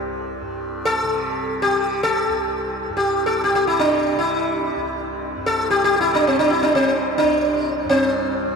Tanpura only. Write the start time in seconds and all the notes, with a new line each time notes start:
Already playing: C2 G2 C3
0.42 G2
1.04 C3
1.66 C3
2.29 C2
2.89 G2
3.53 C3
4.15 C3
4.76 C2
5.37 G2
6.01 C3
6.62 C3
7.22 C2
7.85 G2
8.47 C3